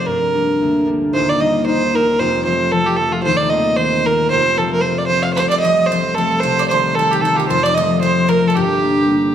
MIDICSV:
0, 0, Header, 1, 4, 480
1, 0, Start_track
1, 0, Tempo, 264901
1, 116, Time_signature, 4, 2, 24, 8
1, 16940, End_track
2, 0, Start_track
2, 0, Title_t, "Fiddle"
2, 0, Program_c, 0, 110
2, 121, Note_on_c, 0, 70, 91
2, 1567, Note_off_c, 0, 70, 0
2, 2063, Note_on_c, 0, 72, 96
2, 2339, Note_on_c, 0, 74, 85
2, 2366, Note_off_c, 0, 72, 0
2, 2555, Note_on_c, 0, 75, 81
2, 2583, Note_off_c, 0, 74, 0
2, 3005, Note_off_c, 0, 75, 0
2, 3016, Note_on_c, 0, 72, 96
2, 3534, Note_on_c, 0, 70, 98
2, 3561, Note_off_c, 0, 72, 0
2, 3972, Note_on_c, 0, 72, 97
2, 3999, Note_off_c, 0, 70, 0
2, 4427, Note_off_c, 0, 72, 0
2, 4438, Note_on_c, 0, 72, 90
2, 4924, Note_on_c, 0, 69, 99
2, 4951, Note_off_c, 0, 72, 0
2, 5189, Note_on_c, 0, 67, 93
2, 5216, Note_off_c, 0, 69, 0
2, 5371, Note_on_c, 0, 69, 101
2, 5398, Note_off_c, 0, 67, 0
2, 5664, Note_on_c, 0, 65, 77
2, 5691, Note_off_c, 0, 69, 0
2, 5844, Note_off_c, 0, 65, 0
2, 5855, Note_on_c, 0, 72, 122
2, 6104, Note_on_c, 0, 74, 104
2, 6131, Note_off_c, 0, 72, 0
2, 6340, Note_on_c, 0, 75, 99
2, 6367, Note_off_c, 0, 74, 0
2, 6820, Note_on_c, 0, 72, 101
2, 6847, Note_off_c, 0, 75, 0
2, 7356, Note_on_c, 0, 70, 94
2, 7383, Note_off_c, 0, 72, 0
2, 7790, Note_off_c, 0, 70, 0
2, 7800, Note_on_c, 0, 72, 117
2, 8295, Note_on_c, 0, 69, 96
2, 8322, Note_off_c, 0, 72, 0
2, 8559, Note_off_c, 0, 69, 0
2, 8570, Note_on_c, 0, 70, 101
2, 8718, Note_on_c, 0, 72, 85
2, 8746, Note_off_c, 0, 70, 0
2, 9028, Note_on_c, 0, 74, 96
2, 9055, Note_off_c, 0, 72, 0
2, 9177, Note_off_c, 0, 74, 0
2, 9188, Note_on_c, 0, 72, 97
2, 9475, Note_on_c, 0, 77, 82
2, 9502, Note_off_c, 0, 72, 0
2, 9658, Note_off_c, 0, 77, 0
2, 9669, Note_on_c, 0, 72, 96
2, 9954, Note_off_c, 0, 72, 0
2, 9966, Note_on_c, 0, 74, 98
2, 10132, Note_off_c, 0, 74, 0
2, 10143, Note_on_c, 0, 75, 96
2, 10624, Note_on_c, 0, 72, 88
2, 10651, Note_off_c, 0, 75, 0
2, 11138, Note_on_c, 0, 69, 92
2, 11166, Note_off_c, 0, 72, 0
2, 11593, Note_on_c, 0, 72, 103
2, 11621, Note_off_c, 0, 69, 0
2, 12104, Note_off_c, 0, 72, 0
2, 12114, Note_on_c, 0, 72, 86
2, 12592, Note_on_c, 0, 69, 85
2, 12619, Note_off_c, 0, 72, 0
2, 12887, Note_on_c, 0, 67, 77
2, 12914, Note_off_c, 0, 69, 0
2, 13070, Note_on_c, 0, 69, 94
2, 13098, Note_off_c, 0, 67, 0
2, 13301, Note_on_c, 0, 65, 50
2, 13328, Note_off_c, 0, 69, 0
2, 13348, Note_on_c, 0, 67, 85
2, 13375, Note_off_c, 0, 65, 0
2, 13548, Note_off_c, 0, 67, 0
2, 13559, Note_on_c, 0, 72, 102
2, 13838, Note_on_c, 0, 74, 98
2, 13865, Note_off_c, 0, 72, 0
2, 14039, Note_on_c, 0, 75, 88
2, 14067, Note_off_c, 0, 74, 0
2, 14510, Note_off_c, 0, 75, 0
2, 14521, Note_on_c, 0, 72, 92
2, 15020, Note_on_c, 0, 70, 103
2, 15047, Note_off_c, 0, 72, 0
2, 15358, Note_on_c, 0, 69, 75
2, 15385, Note_off_c, 0, 70, 0
2, 15495, Note_on_c, 0, 67, 92
2, 15523, Note_off_c, 0, 69, 0
2, 16925, Note_off_c, 0, 67, 0
2, 16940, End_track
3, 0, Start_track
3, 0, Title_t, "Mandolin"
3, 0, Program_c, 1, 25
3, 9735, Note_on_c, 1, 72, 88
3, 9986, Note_off_c, 1, 72, 0
3, 9994, Note_on_c, 1, 74, 89
3, 10195, Note_off_c, 1, 74, 0
3, 10232, Note_on_c, 1, 75, 81
3, 10671, Note_off_c, 1, 75, 0
3, 10722, Note_on_c, 1, 72, 87
3, 11156, Note_off_c, 1, 72, 0
3, 11197, Note_on_c, 1, 69, 67
3, 11646, Note_off_c, 1, 69, 0
3, 11654, Note_on_c, 1, 72, 78
3, 11907, Note_off_c, 1, 72, 0
3, 11945, Note_on_c, 1, 74, 86
3, 12150, Note_off_c, 1, 74, 0
3, 12163, Note_on_c, 1, 72, 82
3, 12596, Note_off_c, 1, 72, 0
3, 12665, Note_on_c, 1, 69, 78
3, 12916, Note_on_c, 1, 67, 79
3, 12918, Note_off_c, 1, 69, 0
3, 13095, Note_off_c, 1, 67, 0
3, 13139, Note_on_c, 1, 69, 79
3, 13370, Note_off_c, 1, 69, 0
3, 13400, Note_on_c, 1, 67, 70
3, 13577, Note_off_c, 1, 67, 0
3, 13595, Note_on_c, 1, 72, 82
3, 13837, Note_off_c, 1, 72, 0
3, 13873, Note_on_c, 1, 74, 87
3, 14072, Note_off_c, 1, 74, 0
3, 14087, Note_on_c, 1, 75, 98
3, 14516, Note_off_c, 1, 75, 0
3, 14543, Note_on_c, 1, 72, 74
3, 14982, Note_off_c, 1, 72, 0
3, 15013, Note_on_c, 1, 70, 80
3, 15359, Note_off_c, 1, 70, 0
3, 15397, Note_on_c, 1, 69, 70
3, 15487, Note_off_c, 1, 69, 0
3, 15522, Note_on_c, 1, 67, 64
3, 16865, Note_off_c, 1, 67, 0
3, 16940, End_track
4, 0, Start_track
4, 0, Title_t, "Harp"
4, 0, Program_c, 2, 46
4, 0, Note_on_c, 2, 36, 60
4, 0, Note_on_c, 2, 53, 44
4, 0, Note_on_c, 2, 57, 36
4, 0, Note_on_c, 2, 60, 48
4, 0, Note_on_c, 2, 63, 46
4, 128, Note_on_c, 2, 43, 66
4, 207, Note_off_c, 2, 36, 0
4, 207, Note_off_c, 2, 53, 0
4, 614, Note_on_c, 2, 55, 45
4, 628, Note_on_c, 2, 58, 43
4, 636, Note_on_c, 2, 62, 53
4, 736, Note_off_c, 2, 57, 0
4, 745, Note_off_c, 2, 63, 0
4, 1106, Note_on_c, 2, 38, 63
4, 1173, Note_off_c, 2, 43, 0
4, 1535, Note_off_c, 2, 55, 0
4, 1557, Note_on_c, 2, 55, 47
4, 1560, Note_off_c, 2, 58, 0
4, 1567, Note_on_c, 2, 58, 42
4, 1568, Note_off_c, 2, 62, 0
4, 1575, Note_on_c, 2, 62, 52
4, 2048, Note_on_c, 2, 27, 61
4, 2058, Note_on_c, 2, 39, 63
4, 2138, Note_off_c, 2, 38, 0
4, 2138, Note_off_c, 2, 55, 0
4, 2156, Note_off_c, 2, 62, 0
4, 2529, Note_on_c, 2, 55, 52
4, 2537, Note_off_c, 2, 58, 0
4, 2544, Note_on_c, 2, 58, 52
4, 2553, Note_on_c, 2, 63, 59
4, 2987, Note_off_c, 2, 55, 0
4, 3006, Note_on_c, 2, 55, 44
4, 3010, Note_off_c, 2, 58, 0
4, 3017, Note_on_c, 2, 58, 47
4, 3020, Note_off_c, 2, 63, 0
4, 3027, Note_on_c, 2, 63, 54
4, 3493, Note_off_c, 2, 55, 0
4, 3511, Note_off_c, 2, 58, 0
4, 3514, Note_on_c, 2, 55, 49
4, 3519, Note_on_c, 2, 58, 41
4, 3522, Note_off_c, 2, 63, 0
4, 3529, Note_on_c, 2, 63, 60
4, 3984, Note_on_c, 2, 41, 67
4, 3996, Note_on_c, 2, 29, 69
4, 4063, Note_off_c, 2, 27, 0
4, 4063, Note_off_c, 2, 39, 0
4, 4063, Note_off_c, 2, 55, 0
4, 4453, Note_on_c, 2, 53, 55
4, 4457, Note_on_c, 2, 57, 43
4, 4458, Note_off_c, 2, 60, 0
4, 4465, Note_on_c, 2, 60, 56
4, 4566, Note_off_c, 2, 58, 0
4, 4924, Note_off_c, 2, 53, 0
4, 4946, Note_on_c, 2, 53, 49
4, 4947, Note_off_c, 2, 57, 0
4, 4951, Note_off_c, 2, 60, 0
4, 4954, Note_on_c, 2, 57, 40
4, 4959, Note_on_c, 2, 60, 57
4, 5406, Note_off_c, 2, 53, 0
4, 5424, Note_on_c, 2, 53, 50
4, 5427, Note_off_c, 2, 57, 0
4, 5429, Note_off_c, 2, 60, 0
4, 5435, Note_on_c, 2, 57, 46
4, 5436, Note_on_c, 2, 60, 53
4, 5895, Note_on_c, 2, 27, 67
4, 5901, Note_on_c, 2, 39, 71
4, 5986, Note_off_c, 2, 29, 0
4, 5986, Note_off_c, 2, 41, 0
4, 5986, Note_off_c, 2, 53, 0
4, 6383, Note_on_c, 2, 51, 55
4, 6393, Note_on_c, 2, 55, 43
4, 6401, Note_off_c, 2, 60, 0
4, 6409, Note_on_c, 2, 60, 58
4, 6841, Note_off_c, 2, 51, 0
4, 6856, Note_off_c, 2, 55, 0
4, 6862, Note_on_c, 2, 51, 54
4, 6872, Note_on_c, 2, 55, 42
4, 6875, Note_off_c, 2, 60, 0
4, 6882, Note_on_c, 2, 60, 49
4, 7314, Note_off_c, 2, 51, 0
4, 7318, Note_off_c, 2, 55, 0
4, 7332, Note_on_c, 2, 51, 47
4, 7341, Note_off_c, 2, 60, 0
4, 7344, Note_on_c, 2, 55, 42
4, 7348, Note_on_c, 2, 60, 53
4, 7814, Note_on_c, 2, 29, 73
4, 7823, Note_on_c, 2, 41, 69
4, 7908, Note_off_c, 2, 27, 0
4, 7908, Note_off_c, 2, 39, 0
4, 7908, Note_off_c, 2, 51, 0
4, 7908, Note_off_c, 2, 55, 0
4, 8302, Note_off_c, 2, 57, 0
4, 8307, Note_on_c, 2, 53, 52
4, 8309, Note_on_c, 2, 57, 47
4, 8315, Note_off_c, 2, 60, 0
4, 8323, Note_on_c, 2, 60, 54
4, 8428, Note_off_c, 2, 63, 0
4, 8743, Note_off_c, 2, 53, 0
4, 8765, Note_on_c, 2, 53, 51
4, 8775, Note_off_c, 2, 57, 0
4, 8782, Note_off_c, 2, 60, 0
4, 8782, Note_on_c, 2, 57, 43
4, 8789, Note_on_c, 2, 60, 50
4, 9230, Note_off_c, 2, 53, 0
4, 9252, Note_off_c, 2, 57, 0
4, 9252, Note_on_c, 2, 53, 43
4, 9259, Note_on_c, 2, 57, 46
4, 9265, Note_off_c, 2, 60, 0
4, 9273, Note_on_c, 2, 60, 56
4, 9751, Note_on_c, 2, 36, 65
4, 9828, Note_off_c, 2, 41, 0
4, 10211, Note_off_c, 2, 53, 0
4, 10228, Note_off_c, 2, 57, 0
4, 10233, Note_on_c, 2, 53, 46
4, 10235, Note_on_c, 2, 57, 42
4, 10241, Note_off_c, 2, 60, 0
4, 10248, Note_on_c, 2, 60, 58
4, 10693, Note_off_c, 2, 53, 0
4, 10714, Note_on_c, 2, 53, 49
4, 10720, Note_off_c, 2, 57, 0
4, 10726, Note_off_c, 2, 60, 0
4, 10727, Note_on_c, 2, 57, 39
4, 10733, Note_on_c, 2, 60, 55
4, 11159, Note_off_c, 2, 53, 0
4, 11175, Note_on_c, 2, 53, 48
4, 11184, Note_off_c, 2, 57, 0
4, 11191, Note_off_c, 2, 60, 0
4, 11191, Note_on_c, 2, 57, 44
4, 11199, Note_on_c, 2, 60, 47
4, 11656, Note_off_c, 2, 36, 0
4, 11678, Note_on_c, 2, 36, 76
4, 11747, Note_off_c, 2, 29, 0
4, 11747, Note_off_c, 2, 53, 0
4, 12162, Note_on_c, 2, 51, 53
4, 12167, Note_off_c, 2, 60, 0
4, 12171, Note_on_c, 2, 55, 43
4, 12175, Note_on_c, 2, 60, 49
4, 12610, Note_off_c, 2, 51, 0
4, 12623, Note_off_c, 2, 55, 0
4, 12632, Note_on_c, 2, 51, 51
4, 12639, Note_on_c, 2, 55, 44
4, 12648, Note_off_c, 2, 60, 0
4, 12656, Note_on_c, 2, 60, 51
4, 13059, Note_off_c, 2, 51, 0
4, 13066, Note_on_c, 2, 51, 55
4, 13092, Note_off_c, 2, 55, 0
4, 13113, Note_on_c, 2, 55, 44
4, 13159, Note_off_c, 2, 60, 0
4, 13166, Note_on_c, 2, 60, 53
4, 13585, Note_on_c, 2, 29, 71
4, 13599, Note_on_c, 2, 41, 71
4, 13663, Note_off_c, 2, 36, 0
4, 13663, Note_off_c, 2, 51, 0
4, 13663, Note_off_c, 2, 55, 0
4, 14061, Note_off_c, 2, 57, 0
4, 14065, Note_on_c, 2, 53, 55
4, 14068, Note_on_c, 2, 57, 51
4, 14075, Note_off_c, 2, 60, 0
4, 14082, Note_on_c, 2, 60, 60
4, 14529, Note_off_c, 2, 53, 0
4, 14550, Note_off_c, 2, 57, 0
4, 14551, Note_on_c, 2, 53, 52
4, 14557, Note_on_c, 2, 57, 44
4, 14561, Note_off_c, 2, 60, 0
4, 14568, Note_on_c, 2, 60, 58
4, 14999, Note_off_c, 2, 53, 0
4, 15016, Note_on_c, 2, 53, 51
4, 15022, Note_off_c, 2, 60, 0
4, 15023, Note_off_c, 2, 57, 0
4, 15029, Note_on_c, 2, 60, 52
4, 15031, Note_on_c, 2, 57, 39
4, 15497, Note_on_c, 2, 43, 69
4, 15505, Note_on_c, 2, 31, 69
4, 15577, Note_off_c, 2, 41, 0
4, 15578, Note_off_c, 2, 29, 0
4, 15578, Note_off_c, 2, 53, 0
4, 15972, Note_on_c, 2, 55, 49
4, 15979, Note_on_c, 2, 58, 47
4, 15998, Note_on_c, 2, 62, 56
4, 16088, Note_off_c, 2, 57, 0
4, 16395, Note_off_c, 2, 55, 0
4, 16403, Note_on_c, 2, 55, 42
4, 16444, Note_off_c, 2, 58, 0
4, 16451, Note_on_c, 2, 58, 46
4, 16498, Note_off_c, 2, 62, 0
4, 16505, Note_on_c, 2, 62, 56
4, 16900, Note_off_c, 2, 55, 0
4, 16923, Note_off_c, 2, 58, 0
4, 16936, Note_off_c, 2, 62, 0
4, 16940, Note_off_c, 2, 31, 0
4, 16940, Note_off_c, 2, 43, 0
4, 16940, Note_off_c, 2, 60, 0
4, 16940, End_track
0, 0, End_of_file